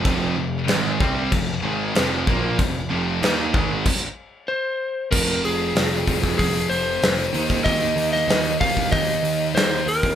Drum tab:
CC |x---x---x---x---|x---x---x-------|x---------------|----------------|
HH |----------------|----------------|--o-o-o-o-o-o-o-|o-o-o-o-o-o-o-o-|
SD |----o-------o---|----o-----------|----o--o----o---|---oo-------o---|
BD |o-----o-o-----o-|o-----o-o-------|o-----ooo------o|o-----ooo------o|